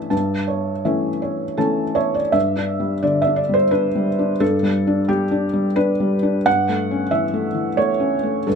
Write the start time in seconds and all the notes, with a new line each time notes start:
Already playing: G2 E3 A3 C#4 C#5 E5 A5
0.10 G2 A5
0.48 C#5
0.85 E3 A3 C#4 E5
1.22 C#5
1.57 E3 A3 C#4 A4 A5
1.95 C#5 E5
2.14 D5
2.32 G2 E5
2.57 D4
2.80 G3
3.03 D3 D5
3.22 E5
3.27 D4
3.36 D5
3.49 G3
3.54 C5
3.71 D4 B4
3.95 G3
4.19 D4
4.40 G2 A4
4.63 G3
4.87 D4
5.08 G3 G4
5.31 D4
5.53 G3
5.76 D4 B4
6.00 G3
6.23 D4
6.46 G2 F#5
6.69 A3
6.91 C#4
7.11 E3 E5
7.34 A3
7.54 E3
7.77 A3 C#5
8.00 C#4
8.23 A3
8.47 G2 A4